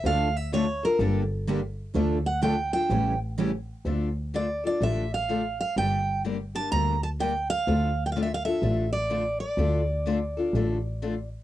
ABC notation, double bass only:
X:1
M:4/4
L:1/8
Q:"Swing" 1/4=126
K:Dm
V:1 name="Double bass" clef=bass
D,,4 G,,,4 | D,,4 A,,,4 | D,,4 A,,,4 | G,,,4 D,,4 |
D,,4 A,,,4 | D,,4 A,,,4 |]